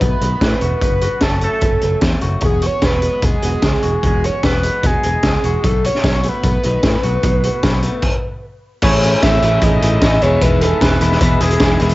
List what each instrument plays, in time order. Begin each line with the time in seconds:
Already playing: overdriven electric guitar B2 A3 F#4
0.00 picked electric bass B1, overdriven electric guitar B3, analog synth lead B4, kick, closed hi-hat
0.21 picked electric bass B1, overdriven electric guitar D#3, closed hi-hat
0.41 picked electric bass A2, overdriven electric guitar A3, kick, snare, closed hi-hat
0.61 picked electric bass E1, overdriven electric guitar F#4, closed hi-hat
0.81 picked electric bass F#1, overdriven electric guitar F#2, analog synth lead B4, kick, closed hi-hat
1.01 overdriven electric guitar F#4, closed hi-hat
1.21 picked electric bass F#1, overdriven electric guitar C#4, analog synth lead A4, kick, snare, closed hi-hat
1.41 overdriven electric guitar A3, analog synth lead A4, closed hi-hat
1.61 picked electric bass F#1, overdriven electric guitar C#4, kick, closed hi-hat
1.81 picked electric bass F#1, overdriven electric guitar F#3, closed hi-hat
2.01 picked electric bass E2, overdriven electric guitar A3, kick, snare, closed hi-hat
2.21 picked electric bass F#1, overdriven electric guitar F#4, closed hi-hat
2.41 picked electric bass E1, overdriven electric guitar E2, clean electric guitar F#3 B3 F#4, kick, closed hi-hat
2.45 analog synth lead G#4
2.62 clean electric guitar F#3 B3, overdriven electric guitar F#4, closed hi-hat
2.66 analog synth lead C#5
2.82 picked electric bass E1, clean electric guitar F#3 B3, overdriven electric guitar B3, analog synth lead B4, kick, snare, closed hi-hat
3.02 clean electric guitar F#3 B3, overdriven electric guitar G#3, closed hi-hat
3.22 picked electric bass E1, clean electric guitar F#3 B3, overdriven electric guitar B3, analog synth lead G#4, kick, closed hi-hat
3.42 picked electric bass E1, overdriven electric guitar E3, clean electric guitar F#3 B3 F#4, closed hi-hat
3.62 picked electric bass C#2, overdriven electric guitar G#3, kick, snare, closed hi-hat
3.83 picked electric bass E1, clean electric guitar F#3 B3, overdriven electric guitar F#4, closed hi-hat
4.03 picked electric bass E1, overdriven electric guitar E2, clean electric guitar F#3 B3 F#4, analog synth lead G#4, kick, closed hi-hat
4.24 clean electric guitar F#3 B3, overdriven electric guitar F#4, analog synth lead C#5, closed hi-hat
4.43 picked electric bass E1, clean electric guitar F#3 B3, overdriven electric guitar B3, analog synth lead B4, kick, snare, closed hi-hat
4.63 clean electric guitar F#3 B3, overdriven electric guitar G#3, closed hi-hat
4.83 picked electric bass E1, clean electric guitar F#3 B3 F#4, overdriven electric guitar B3, analog synth lead G#4, kick, closed hi-hat
5.03 picked electric bass E1, overdriven electric guitar E3, clean electric guitar F#3 B3, closed hi-hat
5.23 picked electric bass C#2, clean electric guitar F#3 B3, overdriven electric guitar G#3, kick, snare, closed hi-hat
5.44 picked electric bass E1, clean electric guitar F#3 B3, overdriven electric guitar F#4, closed hi-hat
5.64 picked electric bass B1, overdriven electric guitar B2, clean electric guitar F#3 B3 D#4, analog synth lead A4, kick, closed hi-hat
5.84 clean electric guitar F#3, overdriven electric guitar F#4, analog synth lead C#5, closed hi-hat
5.94 snare
6.03 picked electric bass B1, clean electric guitar F#3 B3, overdriven electric guitar B3, kick, snare, closed hi-hat
6.23 clean electric guitar F#3 B3, overdriven electric guitar A3, closed hi-hat
6.28 analog synth lead B4
6.43 picked electric bass B1, clean electric guitar F#3 B3, overdriven electric guitar B3, kick, closed hi-hat
6.63 picked electric bass B1, overdriven electric guitar D#3, clean electric guitar F#3 B3 D#4, closed hi-hat
6.83 picked electric bass A2, clean electric guitar F#3, overdriven electric guitar A3, kick, snare, closed hi-hat
7.03 picked electric bass B1, clean electric guitar F#3 B3, overdriven electric guitar F#4, closed hi-hat
7.23 picked electric bass B1, overdriven electric guitar B2, clean electric guitar F#3 B3 D#4, kick, closed hi-hat
7.43 clean electric guitar F#3 B3, overdriven electric guitar F#4, closed hi-hat
7.63 picked electric bass B1, overdriven electric guitar B3, clean electric guitar B3, kick, snare, closed hi-hat
7.83 clean electric guitar F#3 B3, overdriven electric guitar A3, closed hi-hat
8.02 kick, crash
8.82 picked electric bass A1, overdriven electric guitar A2 E3 A3 C#4 E4, clean electric guitar E3 A3 C#4 G#4, analog synth lead C#5, kick, crash
9.03 overdriven electric guitar A2 E3 A3 C#4 E4, clean electric guitar E3 A3 C#4 G#4, closed hi-hat
9.22 picked electric bass A1, overdriven electric guitar A2 E3 A3 C#4 E4, clean electric guitar E3 A3 C#4 G#4, analog synth lead E5, kick, snare, closed hi-hat
9.42 picked electric bass A1, overdriven electric guitar A2 E3 A3 C#4 E4, clean electric guitar E3 A3 C#4 G#4, closed hi-hat
9.61 picked electric bass A1, overdriven electric guitar A2 E3 A3 C#4 E4, clean electric guitar E3 A3 C#4 G#4, analog synth lead D#5, kick, closed hi-hat
9.82 picked electric bass A1, overdriven electric guitar A2 E3 A3 C#4 E4, clean electric guitar E3 A3 C#4 G#4, closed hi-hat
10.01 picked electric bass A1, overdriven electric guitar A2 E3 A3 C#4 E4, clean electric guitar E3 A3 C#4 G#4, kick, snare, closed hi-hat
10.22 picked electric bass E1, overdriven electric guitar E2 B2 E3 G#3 B3 E4, clean electric guitar D#3 B3 D#4 G#4, analog synth lead C#5, closed hi-hat
10.41 picked electric bass E1, overdriven electric guitar E2 B2 E3 G#3 B3 E4, clean electric guitar D#3 B3 D#4 G#4, analog synth lead B4, kick, closed hi-hat
10.61 overdriven electric guitar E2 B2 E3 G#3 B3 E4, clean electric guitar D#3 B3 D#4 G#4, analog synth lead A4, closed hi-hat
10.81 picked electric bass E1, overdriven electric guitar E2 B2 E3 G#3 B3 E4, clean electric guitar D#3 B3 D#4 G#4, analog synth lead B4, kick, snare, closed hi-hat
11.01 picked electric bass E1, overdriven electric guitar E2 B2 E3 G#3 B3 E4, clean electric guitar D#3 B3 D#4 G#4, closed hi-hat
11.11 snare
11.21 picked electric bass E1, overdriven electric guitar E2 B2 E3 G#3 B3 E4, clean electric guitar D#3 B3 D#4 G#4, analog synth lead B4, kick, closed hi-hat
11.40 picked electric bass E1, overdriven electric guitar E2 B2 E3 G#3 B3 E4, clean electric guitar D#3 B3 D#4 G#4, analog synth lead G#4, closed hi-hat
11.50 closed hi-hat
11.59 picked electric bass E1, overdriven electric guitar E2 B2 E3 G#3 B3 E4, clean electric guitar D#3 B3 D#4 G#4, kick, snare, closed hi-hat
11.79 picked electric bass E1, overdriven electric guitar E2 B2 E3 G#3 B3 E4, clean electric guitar D#3 B3 D#4 G#4, closed hi-hat
11.89 closed hi-hat